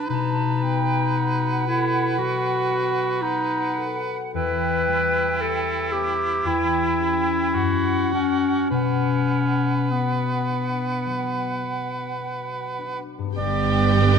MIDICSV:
0, 0, Header, 1, 10, 480
1, 0, Start_track
1, 0, Key_signature, 2, "minor"
1, 0, Tempo, 1071429
1, 42, Time_signature, 4, 2, 24, 8
1, 521, Tempo, 1030928
1, 1481, Tempo, 1117318
1, 1961, Tempo, 1069519
1, 3401, Tempo, 1171875
1, 4841, Tempo, 1156069
1, 5801, Tempo, 1100917
1, 6154, End_track
2, 0, Start_track
2, 0, Title_t, "Violin section"
2, 0, Program_c, 0, 48
2, 5794, Note_on_c, 0, 79, 49
2, 6154, Note_off_c, 0, 79, 0
2, 6154, End_track
3, 0, Start_track
3, 0, Title_t, "Flute section"
3, 0, Program_c, 1, 73
3, 45, Note_on_c, 1, 81, 44
3, 282, Note_off_c, 1, 81, 0
3, 286, Note_on_c, 1, 79, 45
3, 522, Note_off_c, 1, 79, 0
3, 524, Note_on_c, 1, 78, 46
3, 1470, Note_off_c, 1, 78, 0
3, 1476, Note_on_c, 1, 78, 43
3, 1949, Note_off_c, 1, 78, 0
3, 1962, Note_on_c, 1, 79, 55
3, 2760, Note_off_c, 1, 79, 0
3, 2900, Note_on_c, 1, 79, 44
3, 3386, Note_off_c, 1, 79, 0
3, 3399, Note_on_c, 1, 78, 41
3, 3876, Note_off_c, 1, 78, 0
3, 3880, Note_on_c, 1, 78, 43
3, 4356, Note_off_c, 1, 78, 0
3, 4365, Note_on_c, 1, 78, 41
3, 5644, Note_off_c, 1, 78, 0
3, 6154, End_track
4, 0, Start_track
4, 0, Title_t, "Oboe"
4, 0, Program_c, 2, 68
4, 44, Note_on_c, 2, 71, 52
4, 1892, Note_off_c, 2, 71, 0
4, 1965, Note_on_c, 2, 64, 56
4, 3398, Note_on_c, 2, 66, 48
4, 3404, Note_off_c, 2, 64, 0
4, 3871, Note_off_c, 2, 66, 0
4, 3874, Note_on_c, 2, 71, 47
4, 5642, Note_off_c, 2, 71, 0
4, 5798, Note_on_c, 2, 74, 65
4, 6154, Note_off_c, 2, 74, 0
4, 6154, End_track
5, 0, Start_track
5, 0, Title_t, "Violin section"
5, 0, Program_c, 3, 48
5, 5799, Note_on_c, 3, 67, 51
5, 6154, Note_off_c, 3, 67, 0
5, 6154, End_track
6, 0, Start_track
6, 0, Title_t, "Clarinet"
6, 0, Program_c, 4, 71
6, 32, Note_on_c, 4, 63, 63
6, 756, Note_off_c, 4, 63, 0
6, 758, Note_on_c, 4, 64, 66
6, 992, Note_off_c, 4, 64, 0
6, 996, Note_on_c, 4, 66, 68
6, 1478, Note_on_c, 4, 63, 70
6, 1485, Note_off_c, 4, 66, 0
6, 1837, Note_off_c, 4, 63, 0
6, 1968, Note_on_c, 4, 71, 77
6, 2442, Note_on_c, 4, 69, 62
6, 2448, Note_off_c, 4, 71, 0
6, 2670, Note_on_c, 4, 67, 76
6, 2677, Note_off_c, 4, 69, 0
6, 2914, Note_on_c, 4, 64, 70
6, 2921, Note_off_c, 4, 67, 0
6, 3637, Note_off_c, 4, 64, 0
6, 3640, Note_on_c, 4, 61, 58
6, 3874, Note_off_c, 4, 61, 0
6, 3877, Note_on_c, 4, 61, 64
6, 4369, Note_on_c, 4, 59, 46
6, 4375, Note_off_c, 4, 61, 0
6, 5319, Note_off_c, 4, 59, 0
6, 6154, End_track
7, 0, Start_track
7, 0, Title_t, "Harp"
7, 0, Program_c, 5, 46
7, 0, Note_on_c, 5, 54, 31
7, 0, Note_on_c, 5, 59, 29
7, 0, Note_on_c, 5, 62, 32
7, 0, Note_on_c, 5, 71, 34
7, 40, Note_on_c, 5, 47, 49
7, 61, Note_off_c, 5, 62, 0
7, 275, Note_off_c, 5, 59, 0
7, 281, Note_on_c, 5, 59, 34
7, 518, Note_on_c, 5, 66, 41
7, 760, Note_on_c, 5, 69, 35
7, 988, Note_off_c, 5, 54, 0
7, 993, Note_on_c, 5, 54, 34
7, 1234, Note_off_c, 5, 59, 0
7, 1240, Note_on_c, 5, 59, 33
7, 1337, Note_off_c, 5, 71, 0
7, 1474, Note_off_c, 5, 66, 0
7, 1479, Note_on_c, 5, 66, 43
7, 1712, Note_off_c, 5, 69, 0
7, 1717, Note_on_c, 5, 69, 37
7, 1809, Note_off_c, 5, 47, 0
7, 1960, Note_on_c, 5, 40, 52
7, 1979, Note_off_c, 5, 54, 0
7, 1980, Note_off_c, 5, 66, 0
7, 1980, Note_off_c, 5, 69, 0
7, 2200, Note_on_c, 5, 55, 36
7, 2438, Note_on_c, 5, 67, 41
7, 2669, Note_off_c, 5, 59, 0
7, 2675, Note_on_c, 5, 59, 37
7, 2900, Note_off_c, 5, 40, 0
7, 2905, Note_on_c, 5, 40, 47
7, 2929, Note_off_c, 5, 59, 0
7, 3145, Note_off_c, 5, 67, 0
7, 3148, Note_on_c, 5, 61, 34
7, 3150, Note_on_c, 5, 67, 36
7, 3398, Note_on_c, 5, 42, 44
7, 3417, Note_off_c, 5, 40, 0
7, 3418, Note_off_c, 5, 55, 0
7, 3419, Note_off_c, 5, 67, 0
7, 3628, Note_off_c, 5, 61, 0
7, 3631, Note_on_c, 5, 61, 29
7, 3635, Note_on_c, 5, 66, 34
7, 3873, Note_on_c, 5, 47, 46
7, 3895, Note_off_c, 5, 42, 0
7, 3895, Note_off_c, 5, 61, 0
7, 4117, Note_on_c, 5, 59, 33
7, 4359, Note_off_c, 5, 66, 0
7, 4363, Note_on_c, 5, 66, 38
7, 4604, Note_on_c, 5, 62, 28
7, 4838, Note_on_c, 5, 54, 29
7, 5071, Note_off_c, 5, 59, 0
7, 5076, Note_on_c, 5, 59, 29
7, 5309, Note_off_c, 5, 66, 0
7, 5314, Note_on_c, 5, 66, 32
7, 5479, Note_off_c, 5, 47, 0
7, 5550, Note_off_c, 5, 62, 0
7, 5555, Note_on_c, 5, 62, 27
7, 5720, Note_on_c, 5, 43, 47
7, 5735, Note_off_c, 5, 59, 0
7, 5740, Note_on_c, 5, 59, 36
7, 5753, Note_off_c, 5, 62, 0
7, 5758, Note_on_c, 5, 62, 39
7, 5777, Note_on_c, 5, 67, 38
7, 5817, Note_off_c, 5, 66, 0
7, 5818, Note_off_c, 5, 54, 0
7, 6154, Note_off_c, 5, 43, 0
7, 6154, Note_off_c, 5, 59, 0
7, 6154, Note_off_c, 5, 62, 0
7, 6154, Note_off_c, 5, 67, 0
7, 6154, End_track
8, 0, Start_track
8, 0, Title_t, "Viola section"
8, 0, Program_c, 6, 48
8, 5800, Note_on_c, 6, 59, 52
8, 6154, Note_off_c, 6, 59, 0
8, 6154, End_track
9, 0, Start_track
9, 0, Title_t, "Cello section"
9, 0, Program_c, 7, 48
9, 5799, Note_on_c, 7, 43, 51
9, 6154, Note_off_c, 7, 43, 0
9, 6154, End_track
10, 0, Start_track
10, 0, Title_t, "Double bass section"
10, 0, Program_c, 8, 48
10, 5801, Note_on_c, 8, 31, 56
10, 6154, Note_off_c, 8, 31, 0
10, 6154, End_track
0, 0, End_of_file